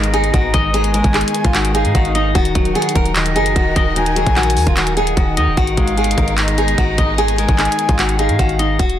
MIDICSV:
0, 0, Header, 1, 7, 480
1, 0, Start_track
1, 0, Tempo, 402685
1, 882, Time_signature, 4, 2, 24, 8
1, 10717, End_track
2, 0, Start_track
2, 0, Title_t, "Flute"
2, 0, Program_c, 0, 73
2, 0, Note_on_c, 0, 75, 97
2, 835, Note_off_c, 0, 75, 0
2, 882, Note_on_c, 0, 80, 117
2, 2035, Note_off_c, 0, 80, 0
2, 2083, Note_on_c, 0, 77, 90
2, 2760, Note_off_c, 0, 77, 0
2, 3042, Note_on_c, 0, 78, 86
2, 3719, Note_off_c, 0, 78, 0
2, 3763, Note_on_c, 0, 75, 102
2, 4675, Note_off_c, 0, 75, 0
2, 4726, Note_on_c, 0, 80, 127
2, 5876, Note_off_c, 0, 80, 0
2, 5920, Note_on_c, 0, 78, 81
2, 6598, Note_off_c, 0, 78, 0
2, 6885, Note_on_c, 0, 77, 86
2, 7561, Note_off_c, 0, 77, 0
2, 7601, Note_on_c, 0, 75, 96
2, 8514, Note_off_c, 0, 75, 0
2, 8561, Note_on_c, 0, 80, 118
2, 9714, Note_off_c, 0, 80, 0
2, 9761, Note_on_c, 0, 77, 92
2, 10438, Note_off_c, 0, 77, 0
2, 10717, End_track
3, 0, Start_track
3, 0, Title_t, "Nylon-string guitar"
3, 0, Program_c, 1, 24
3, 163, Note_on_c, 1, 68, 87
3, 365, Note_off_c, 1, 68, 0
3, 404, Note_on_c, 1, 66, 83
3, 606, Note_off_c, 1, 66, 0
3, 882, Note_on_c, 1, 68, 104
3, 1084, Note_off_c, 1, 68, 0
3, 1123, Note_on_c, 1, 70, 85
3, 1325, Note_off_c, 1, 70, 0
3, 1362, Note_on_c, 1, 68, 83
3, 1700, Note_off_c, 1, 68, 0
3, 1722, Note_on_c, 1, 65, 79
3, 1824, Note_off_c, 1, 65, 0
3, 1842, Note_on_c, 1, 66, 87
3, 2044, Note_off_c, 1, 66, 0
3, 2080, Note_on_c, 1, 68, 88
3, 2283, Note_off_c, 1, 68, 0
3, 2324, Note_on_c, 1, 66, 79
3, 2526, Note_off_c, 1, 66, 0
3, 2563, Note_on_c, 1, 63, 77
3, 2765, Note_off_c, 1, 63, 0
3, 2802, Note_on_c, 1, 66, 100
3, 3253, Note_off_c, 1, 66, 0
3, 3283, Note_on_c, 1, 68, 90
3, 3485, Note_off_c, 1, 68, 0
3, 3522, Note_on_c, 1, 70, 82
3, 3724, Note_off_c, 1, 70, 0
3, 4004, Note_on_c, 1, 68, 87
3, 4206, Note_off_c, 1, 68, 0
3, 4243, Note_on_c, 1, 66, 82
3, 4445, Note_off_c, 1, 66, 0
3, 4721, Note_on_c, 1, 63, 101
3, 4924, Note_off_c, 1, 63, 0
3, 4963, Note_on_c, 1, 68, 80
3, 5165, Note_off_c, 1, 68, 0
3, 5203, Note_on_c, 1, 66, 82
3, 5541, Note_off_c, 1, 66, 0
3, 5564, Note_on_c, 1, 65, 75
3, 5665, Note_off_c, 1, 65, 0
3, 5682, Note_on_c, 1, 66, 97
3, 5885, Note_off_c, 1, 66, 0
3, 5925, Note_on_c, 1, 68, 83
3, 6126, Note_off_c, 1, 68, 0
3, 6163, Note_on_c, 1, 66, 80
3, 6365, Note_off_c, 1, 66, 0
3, 6404, Note_on_c, 1, 63, 83
3, 6605, Note_off_c, 1, 63, 0
3, 6643, Note_on_c, 1, 66, 104
3, 7094, Note_off_c, 1, 66, 0
3, 7123, Note_on_c, 1, 68, 89
3, 7325, Note_off_c, 1, 68, 0
3, 7363, Note_on_c, 1, 70, 79
3, 7565, Note_off_c, 1, 70, 0
3, 7843, Note_on_c, 1, 68, 90
3, 8045, Note_off_c, 1, 68, 0
3, 8083, Note_on_c, 1, 66, 82
3, 8285, Note_off_c, 1, 66, 0
3, 8562, Note_on_c, 1, 68, 103
3, 8765, Note_off_c, 1, 68, 0
3, 8803, Note_on_c, 1, 70, 84
3, 9005, Note_off_c, 1, 70, 0
3, 9042, Note_on_c, 1, 68, 85
3, 9381, Note_off_c, 1, 68, 0
3, 9402, Note_on_c, 1, 65, 78
3, 9504, Note_off_c, 1, 65, 0
3, 9523, Note_on_c, 1, 66, 87
3, 9725, Note_off_c, 1, 66, 0
3, 9761, Note_on_c, 1, 68, 83
3, 9964, Note_off_c, 1, 68, 0
3, 10004, Note_on_c, 1, 66, 81
3, 10206, Note_off_c, 1, 66, 0
3, 10243, Note_on_c, 1, 63, 76
3, 10445, Note_off_c, 1, 63, 0
3, 10483, Note_on_c, 1, 66, 97
3, 10717, Note_off_c, 1, 66, 0
3, 10717, End_track
4, 0, Start_track
4, 0, Title_t, "String section"
4, 0, Program_c, 2, 48
4, 0, Note_on_c, 2, 56, 81
4, 0, Note_on_c, 2, 59, 75
4, 0, Note_on_c, 2, 63, 76
4, 2764, Note_off_c, 2, 56, 0
4, 2764, Note_off_c, 2, 59, 0
4, 2803, Note_on_c, 2, 51, 84
4, 2803, Note_on_c, 2, 66, 76
4, 2803, Note_on_c, 2, 70, 93
4, 6595, Note_off_c, 2, 63, 0
4, 6604, Note_off_c, 2, 51, 0
4, 6604, Note_off_c, 2, 66, 0
4, 6604, Note_off_c, 2, 70, 0
4, 6642, Note_on_c, 2, 63, 94
4, 6643, Note_on_c, 2, 56, 81
4, 6643, Note_on_c, 2, 59, 77
4, 10444, Note_off_c, 2, 56, 0
4, 10444, Note_off_c, 2, 59, 0
4, 10444, Note_off_c, 2, 63, 0
4, 10717, End_track
5, 0, Start_track
5, 0, Title_t, "Clean electric guitar"
5, 0, Program_c, 3, 27
5, 0, Note_on_c, 3, 51, 90
5, 0, Note_on_c, 3, 56, 83
5, 164, Note_on_c, 3, 63, 79
5, 377, Note_off_c, 3, 51, 0
5, 391, Note_on_c, 3, 51, 78
5, 404, Note_off_c, 3, 56, 0
5, 638, Note_on_c, 3, 75, 89
5, 862, Note_off_c, 3, 51, 0
5, 876, Note_on_c, 3, 51, 89
5, 1122, Note_on_c, 3, 56, 82
5, 1344, Note_off_c, 3, 51, 0
5, 1358, Note_on_c, 3, 51, 85
5, 1363, Note_off_c, 3, 63, 0
5, 1819, Note_off_c, 3, 51, 0
5, 1833, Note_on_c, 3, 51, 88
5, 1840, Note_off_c, 3, 75, 0
5, 2083, Note_on_c, 3, 63, 87
5, 2307, Note_off_c, 3, 51, 0
5, 2321, Note_on_c, 3, 51, 83
5, 2322, Note_off_c, 3, 56, 0
5, 2562, Note_on_c, 3, 75, 91
5, 2785, Note_off_c, 3, 51, 0
5, 2800, Note_on_c, 3, 51, 90
5, 2802, Note_off_c, 3, 75, 0
5, 2803, Note_off_c, 3, 63, 0
5, 3041, Note_on_c, 3, 54, 88
5, 3261, Note_off_c, 3, 51, 0
5, 3275, Note_on_c, 3, 51, 92
5, 3745, Note_off_c, 3, 51, 0
5, 3759, Note_on_c, 3, 51, 87
5, 3998, Note_on_c, 3, 63, 90
5, 4238, Note_off_c, 3, 51, 0
5, 4242, Note_off_c, 3, 54, 0
5, 4252, Note_on_c, 3, 51, 87
5, 4480, Note_on_c, 3, 75, 88
5, 4706, Note_off_c, 3, 51, 0
5, 4720, Note_on_c, 3, 51, 99
5, 4960, Note_on_c, 3, 54, 76
5, 5188, Note_off_c, 3, 51, 0
5, 5200, Note_off_c, 3, 63, 0
5, 5203, Note_on_c, 3, 51, 76
5, 5665, Note_off_c, 3, 51, 0
5, 5679, Note_on_c, 3, 51, 86
5, 5681, Note_off_c, 3, 75, 0
5, 5920, Note_on_c, 3, 63, 85
5, 6145, Note_off_c, 3, 51, 0
5, 6159, Note_on_c, 3, 51, 83
5, 6161, Note_off_c, 3, 54, 0
5, 6402, Note_on_c, 3, 75, 87
5, 6628, Note_off_c, 3, 51, 0
5, 6641, Note_off_c, 3, 63, 0
5, 6642, Note_off_c, 3, 75, 0
5, 6642, Note_on_c, 3, 51, 100
5, 6888, Note_on_c, 3, 56, 82
5, 7112, Note_off_c, 3, 51, 0
5, 7126, Note_on_c, 3, 51, 80
5, 7584, Note_off_c, 3, 51, 0
5, 7599, Note_on_c, 3, 51, 91
5, 7847, Note_on_c, 3, 63, 81
5, 8059, Note_off_c, 3, 51, 0
5, 8073, Note_on_c, 3, 51, 78
5, 8085, Note_off_c, 3, 56, 0
5, 8320, Note_on_c, 3, 75, 82
5, 8544, Note_off_c, 3, 51, 0
5, 8558, Note_on_c, 3, 51, 89
5, 8804, Note_on_c, 3, 56, 78
5, 9025, Note_off_c, 3, 51, 0
5, 9039, Note_on_c, 3, 51, 84
5, 9045, Note_off_c, 3, 63, 0
5, 9500, Note_off_c, 3, 51, 0
5, 9514, Note_on_c, 3, 51, 87
5, 9521, Note_off_c, 3, 75, 0
5, 9763, Note_on_c, 3, 63, 86
5, 9988, Note_off_c, 3, 51, 0
5, 10002, Note_on_c, 3, 51, 80
5, 10003, Note_off_c, 3, 56, 0
5, 10242, Note_on_c, 3, 75, 88
5, 10482, Note_off_c, 3, 51, 0
5, 10482, Note_off_c, 3, 75, 0
5, 10483, Note_off_c, 3, 63, 0
5, 10717, End_track
6, 0, Start_track
6, 0, Title_t, "808-style bass"
6, 0, Program_c, 4, 38
6, 0, Note_on_c, 4, 32, 109
6, 373, Note_off_c, 4, 32, 0
6, 402, Note_on_c, 4, 32, 109
6, 632, Note_off_c, 4, 32, 0
6, 643, Note_on_c, 4, 32, 106
6, 1219, Note_off_c, 4, 32, 0
6, 1243, Note_on_c, 4, 32, 103
6, 1473, Note_off_c, 4, 32, 0
6, 1723, Note_on_c, 4, 32, 105
6, 2202, Note_on_c, 4, 44, 101
6, 2220, Note_off_c, 4, 32, 0
6, 2316, Note_off_c, 4, 44, 0
6, 2322, Note_on_c, 4, 32, 111
6, 2783, Note_off_c, 4, 32, 0
6, 2802, Note_on_c, 4, 27, 106
6, 3033, Note_off_c, 4, 27, 0
6, 3043, Note_on_c, 4, 27, 106
6, 3273, Note_off_c, 4, 27, 0
6, 3522, Note_on_c, 4, 27, 108
6, 4003, Note_on_c, 4, 30, 103
6, 4020, Note_off_c, 4, 27, 0
6, 4231, Note_off_c, 4, 30, 0
6, 4242, Note_on_c, 4, 27, 108
6, 4473, Note_off_c, 4, 27, 0
6, 4483, Note_on_c, 4, 27, 103
6, 5059, Note_off_c, 4, 27, 0
6, 5084, Note_on_c, 4, 34, 105
6, 5442, Note_on_c, 4, 39, 100
6, 5460, Note_off_c, 4, 34, 0
6, 5556, Note_off_c, 4, 39, 0
6, 5563, Note_on_c, 4, 27, 97
6, 6139, Note_off_c, 4, 27, 0
6, 6162, Note_on_c, 4, 27, 109
6, 6403, Note_on_c, 4, 39, 98
6, 6421, Note_off_c, 4, 27, 0
6, 6523, Note_on_c, 4, 27, 101
6, 6540, Note_off_c, 4, 39, 0
6, 6637, Note_off_c, 4, 27, 0
6, 6643, Note_on_c, 4, 32, 105
6, 6873, Note_off_c, 4, 32, 0
6, 6883, Note_on_c, 4, 32, 103
6, 7344, Note_off_c, 4, 32, 0
6, 7362, Note_on_c, 4, 32, 105
6, 8053, Note_off_c, 4, 32, 0
6, 8082, Note_on_c, 4, 32, 110
6, 8313, Note_off_c, 4, 32, 0
6, 8323, Note_on_c, 4, 32, 101
6, 8899, Note_off_c, 4, 32, 0
6, 8923, Note_on_c, 4, 32, 100
6, 9153, Note_off_c, 4, 32, 0
6, 9403, Note_on_c, 4, 32, 105
6, 9882, Note_on_c, 4, 44, 100
6, 9900, Note_off_c, 4, 32, 0
6, 9996, Note_off_c, 4, 44, 0
6, 10002, Note_on_c, 4, 32, 106
6, 10463, Note_off_c, 4, 32, 0
6, 10482, Note_on_c, 4, 27, 110
6, 10713, Note_off_c, 4, 27, 0
6, 10717, End_track
7, 0, Start_track
7, 0, Title_t, "Drums"
7, 42, Note_on_c, 9, 42, 86
7, 161, Note_off_c, 9, 42, 0
7, 162, Note_on_c, 9, 42, 63
7, 281, Note_off_c, 9, 42, 0
7, 282, Note_on_c, 9, 42, 56
7, 401, Note_off_c, 9, 42, 0
7, 402, Note_on_c, 9, 36, 98
7, 402, Note_on_c, 9, 42, 73
7, 521, Note_off_c, 9, 36, 0
7, 521, Note_off_c, 9, 42, 0
7, 641, Note_on_c, 9, 42, 79
7, 643, Note_on_c, 9, 36, 100
7, 760, Note_off_c, 9, 42, 0
7, 762, Note_off_c, 9, 36, 0
7, 882, Note_on_c, 9, 42, 85
7, 1001, Note_off_c, 9, 42, 0
7, 1002, Note_on_c, 9, 42, 59
7, 1121, Note_off_c, 9, 42, 0
7, 1122, Note_on_c, 9, 42, 84
7, 1241, Note_off_c, 9, 42, 0
7, 1242, Note_on_c, 9, 42, 59
7, 1243, Note_on_c, 9, 36, 99
7, 1362, Note_off_c, 9, 36, 0
7, 1362, Note_off_c, 9, 42, 0
7, 1362, Note_on_c, 9, 39, 93
7, 1362, Note_on_c, 9, 42, 57
7, 1442, Note_off_c, 9, 42, 0
7, 1442, Note_on_c, 9, 42, 75
7, 1481, Note_off_c, 9, 39, 0
7, 1523, Note_off_c, 9, 42, 0
7, 1523, Note_on_c, 9, 42, 97
7, 1603, Note_off_c, 9, 42, 0
7, 1603, Note_on_c, 9, 42, 89
7, 1722, Note_off_c, 9, 42, 0
7, 1722, Note_on_c, 9, 42, 69
7, 1723, Note_on_c, 9, 36, 107
7, 1842, Note_off_c, 9, 36, 0
7, 1842, Note_off_c, 9, 42, 0
7, 1842, Note_on_c, 9, 39, 116
7, 1842, Note_on_c, 9, 42, 78
7, 1961, Note_off_c, 9, 39, 0
7, 1961, Note_off_c, 9, 42, 0
7, 1963, Note_on_c, 9, 42, 85
7, 2082, Note_off_c, 9, 42, 0
7, 2083, Note_on_c, 9, 42, 65
7, 2202, Note_off_c, 9, 42, 0
7, 2202, Note_on_c, 9, 42, 57
7, 2322, Note_off_c, 9, 42, 0
7, 2322, Note_on_c, 9, 36, 102
7, 2323, Note_on_c, 9, 42, 76
7, 2441, Note_off_c, 9, 36, 0
7, 2442, Note_off_c, 9, 42, 0
7, 2443, Note_on_c, 9, 42, 43
7, 2562, Note_off_c, 9, 42, 0
7, 2563, Note_on_c, 9, 42, 78
7, 2682, Note_off_c, 9, 42, 0
7, 2802, Note_on_c, 9, 36, 119
7, 2803, Note_on_c, 9, 42, 84
7, 2922, Note_off_c, 9, 36, 0
7, 2922, Note_off_c, 9, 42, 0
7, 2922, Note_on_c, 9, 42, 61
7, 3042, Note_off_c, 9, 42, 0
7, 3042, Note_on_c, 9, 42, 83
7, 3043, Note_on_c, 9, 36, 102
7, 3162, Note_off_c, 9, 36, 0
7, 3162, Note_off_c, 9, 42, 0
7, 3162, Note_on_c, 9, 42, 59
7, 3282, Note_off_c, 9, 42, 0
7, 3282, Note_on_c, 9, 42, 54
7, 3363, Note_off_c, 9, 42, 0
7, 3363, Note_on_c, 9, 42, 75
7, 3442, Note_off_c, 9, 42, 0
7, 3442, Note_on_c, 9, 42, 97
7, 3522, Note_off_c, 9, 42, 0
7, 3522, Note_on_c, 9, 36, 90
7, 3522, Note_on_c, 9, 42, 90
7, 3641, Note_off_c, 9, 36, 0
7, 3642, Note_off_c, 9, 42, 0
7, 3642, Note_on_c, 9, 42, 68
7, 3761, Note_off_c, 9, 42, 0
7, 3762, Note_on_c, 9, 42, 78
7, 3763, Note_on_c, 9, 39, 115
7, 3882, Note_off_c, 9, 39, 0
7, 3882, Note_off_c, 9, 42, 0
7, 3882, Note_on_c, 9, 42, 86
7, 4002, Note_off_c, 9, 42, 0
7, 4003, Note_on_c, 9, 42, 66
7, 4122, Note_off_c, 9, 42, 0
7, 4122, Note_on_c, 9, 42, 55
7, 4242, Note_off_c, 9, 42, 0
7, 4242, Note_on_c, 9, 36, 100
7, 4243, Note_on_c, 9, 42, 75
7, 4361, Note_off_c, 9, 36, 0
7, 4362, Note_off_c, 9, 42, 0
7, 4483, Note_on_c, 9, 36, 97
7, 4483, Note_on_c, 9, 42, 82
7, 4602, Note_off_c, 9, 42, 0
7, 4603, Note_off_c, 9, 36, 0
7, 4723, Note_on_c, 9, 42, 84
7, 4842, Note_off_c, 9, 42, 0
7, 4843, Note_on_c, 9, 42, 58
7, 4962, Note_off_c, 9, 42, 0
7, 4963, Note_on_c, 9, 42, 87
7, 5083, Note_off_c, 9, 42, 0
7, 5083, Note_on_c, 9, 36, 100
7, 5083, Note_on_c, 9, 42, 62
7, 5202, Note_on_c, 9, 39, 94
7, 5203, Note_off_c, 9, 36, 0
7, 5203, Note_off_c, 9, 42, 0
7, 5203, Note_on_c, 9, 42, 57
7, 5283, Note_off_c, 9, 42, 0
7, 5283, Note_on_c, 9, 42, 77
7, 5321, Note_off_c, 9, 39, 0
7, 5363, Note_off_c, 9, 42, 0
7, 5363, Note_on_c, 9, 42, 95
7, 5443, Note_on_c, 9, 46, 88
7, 5482, Note_off_c, 9, 42, 0
7, 5562, Note_off_c, 9, 46, 0
7, 5563, Note_on_c, 9, 36, 103
7, 5563, Note_on_c, 9, 42, 66
7, 5682, Note_off_c, 9, 42, 0
7, 5683, Note_off_c, 9, 36, 0
7, 5683, Note_on_c, 9, 39, 113
7, 5683, Note_on_c, 9, 42, 81
7, 5802, Note_off_c, 9, 39, 0
7, 5802, Note_off_c, 9, 42, 0
7, 5803, Note_on_c, 9, 42, 86
7, 5922, Note_off_c, 9, 42, 0
7, 5922, Note_on_c, 9, 42, 63
7, 6042, Note_off_c, 9, 42, 0
7, 6043, Note_on_c, 9, 42, 55
7, 6162, Note_off_c, 9, 42, 0
7, 6162, Note_on_c, 9, 36, 101
7, 6163, Note_on_c, 9, 42, 76
7, 6281, Note_off_c, 9, 36, 0
7, 6282, Note_off_c, 9, 42, 0
7, 6403, Note_on_c, 9, 42, 82
7, 6522, Note_off_c, 9, 42, 0
7, 6643, Note_on_c, 9, 36, 116
7, 6643, Note_on_c, 9, 42, 84
7, 6762, Note_off_c, 9, 36, 0
7, 6762, Note_off_c, 9, 42, 0
7, 6763, Note_on_c, 9, 42, 62
7, 6882, Note_off_c, 9, 42, 0
7, 6883, Note_on_c, 9, 36, 103
7, 6883, Note_on_c, 9, 42, 83
7, 7002, Note_off_c, 9, 36, 0
7, 7002, Note_off_c, 9, 42, 0
7, 7003, Note_on_c, 9, 42, 59
7, 7122, Note_off_c, 9, 42, 0
7, 7122, Note_on_c, 9, 42, 56
7, 7203, Note_off_c, 9, 42, 0
7, 7203, Note_on_c, 9, 42, 77
7, 7282, Note_off_c, 9, 42, 0
7, 7282, Note_on_c, 9, 42, 93
7, 7362, Note_off_c, 9, 42, 0
7, 7362, Note_on_c, 9, 36, 88
7, 7362, Note_on_c, 9, 42, 86
7, 7481, Note_off_c, 9, 36, 0
7, 7481, Note_off_c, 9, 42, 0
7, 7482, Note_on_c, 9, 42, 67
7, 7601, Note_off_c, 9, 42, 0
7, 7601, Note_on_c, 9, 42, 80
7, 7602, Note_on_c, 9, 39, 115
7, 7721, Note_off_c, 9, 39, 0
7, 7721, Note_off_c, 9, 42, 0
7, 7722, Note_on_c, 9, 42, 86
7, 7841, Note_off_c, 9, 42, 0
7, 7842, Note_on_c, 9, 42, 67
7, 7961, Note_off_c, 9, 42, 0
7, 7963, Note_on_c, 9, 42, 56
7, 8082, Note_off_c, 9, 42, 0
7, 8082, Note_on_c, 9, 36, 101
7, 8082, Note_on_c, 9, 42, 75
7, 8201, Note_off_c, 9, 36, 0
7, 8201, Note_off_c, 9, 42, 0
7, 8322, Note_on_c, 9, 42, 79
7, 8323, Note_on_c, 9, 36, 104
7, 8441, Note_off_c, 9, 42, 0
7, 8442, Note_off_c, 9, 36, 0
7, 8562, Note_on_c, 9, 42, 85
7, 8681, Note_off_c, 9, 42, 0
7, 8682, Note_on_c, 9, 42, 60
7, 8801, Note_off_c, 9, 42, 0
7, 8802, Note_on_c, 9, 42, 85
7, 8921, Note_off_c, 9, 42, 0
7, 8922, Note_on_c, 9, 42, 59
7, 8923, Note_on_c, 9, 36, 97
7, 9041, Note_off_c, 9, 42, 0
7, 9041, Note_on_c, 9, 39, 95
7, 9042, Note_off_c, 9, 36, 0
7, 9042, Note_on_c, 9, 42, 57
7, 9122, Note_off_c, 9, 42, 0
7, 9122, Note_on_c, 9, 42, 75
7, 9161, Note_off_c, 9, 39, 0
7, 9202, Note_off_c, 9, 42, 0
7, 9202, Note_on_c, 9, 42, 94
7, 9282, Note_off_c, 9, 42, 0
7, 9282, Note_on_c, 9, 42, 89
7, 9402, Note_off_c, 9, 42, 0
7, 9402, Note_on_c, 9, 42, 70
7, 9403, Note_on_c, 9, 36, 107
7, 9522, Note_off_c, 9, 36, 0
7, 9522, Note_off_c, 9, 42, 0
7, 9522, Note_on_c, 9, 42, 80
7, 9523, Note_on_c, 9, 39, 113
7, 9642, Note_off_c, 9, 39, 0
7, 9642, Note_off_c, 9, 42, 0
7, 9643, Note_on_c, 9, 42, 84
7, 9762, Note_off_c, 9, 42, 0
7, 9763, Note_on_c, 9, 42, 65
7, 9882, Note_off_c, 9, 42, 0
7, 9883, Note_on_c, 9, 42, 54
7, 10002, Note_off_c, 9, 42, 0
7, 10002, Note_on_c, 9, 36, 97
7, 10003, Note_on_c, 9, 42, 77
7, 10121, Note_off_c, 9, 36, 0
7, 10122, Note_off_c, 9, 42, 0
7, 10123, Note_on_c, 9, 42, 42
7, 10242, Note_off_c, 9, 42, 0
7, 10243, Note_on_c, 9, 42, 81
7, 10362, Note_off_c, 9, 42, 0
7, 10482, Note_on_c, 9, 36, 110
7, 10483, Note_on_c, 9, 42, 81
7, 10602, Note_off_c, 9, 36, 0
7, 10602, Note_off_c, 9, 42, 0
7, 10603, Note_on_c, 9, 42, 59
7, 10717, Note_off_c, 9, 42, 0
7, 10717, End_track
0, 0, End_of_file